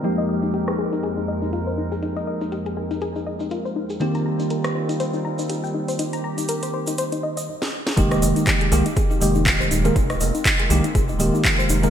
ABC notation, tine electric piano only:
X:1
M:4/4
L:1/16
Q:"Swing 16ths" 1/4=121
K:Fm
V:1 name="Tine electric piano"
[F,A,B,EG]16- | [F,A,B,EG]16 | [E,B,CG]16- | [E,B,CG]12 z4 |
[E,A,B,G]6 [E,A,B,G] z3 [E,A,B,G]4- [E,A,B,G] [E,A,B,B] | z6 [E,A,B,G] z3 [E,A,B,G]4- [E,A,B,G] [E,A,B,B] |]